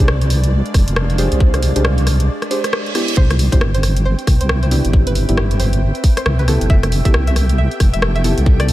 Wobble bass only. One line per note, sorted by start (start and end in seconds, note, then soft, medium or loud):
0.00 0.62 C2 medium
0.74 0.85 F1 loud
0.88 1.28 F1 medium
1.32 1.72 C2 medium
1.76 2.29 C2 medium
3.17 3.49 C2 loud
3.52 4.15 G1 medium
4.27 4.38 C2 loud
4.41 4.81 C2 medium
4.85 5.25 G1 medium
5.29 5.92 G1 medium
6.26 6.58 C2 loud
6.61 6.69 G1 medium
6.70 7.02 F1 loud
7.05 7.68 C2 medium
7.80 7.91 F1 loud
7.93 8.34 F1 medium
8.38 8.73 C2 medium